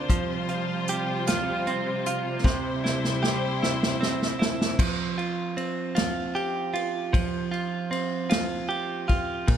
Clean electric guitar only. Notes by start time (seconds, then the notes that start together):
Already playing: C4 D4 A#4
0.10 F3
0.49 F4
0.89 G4
1.28 F4
1.67 C4
2.07 F4
2.45 C3
2.84 E4
3.23 G4
3.62 E4
4.01 C4
4.39 E4
4.79 F3
5.18 F4
5.57 C4
5.95 F4
6.35 G4
6.74 F4
7.13 F3
7.51 F4
7.91 C4
8.30 F4
8.69 G4
9.08 F4
9.48 A#2